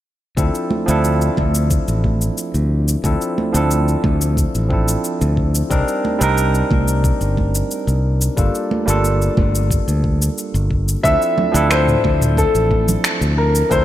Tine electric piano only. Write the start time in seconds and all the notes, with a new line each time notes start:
0.37 F3 C4 D4 E4 A4
0.86 F3 C4 D4 E4
0.91 A4
3.03 F3 C4 D4 E4 A4
3.52 F3 C4 D4 E4
3.57 A4
4.68 F3 C4 D4 E4
4.73 A4
5.70 G3 C4 D4 D#4 A#4
6.19 G3 C4 D4 D#4
6.23 A#4
8.36 G3 A#3 D4 F4 A4
8.86 G3 A#3 D4 F4
8.90 A4
11.03 F3 C4 D4 E4 A4
11.52 F3 C4 D4 E4
11.57 A4
13.69 F3 C4 D4 E4 A4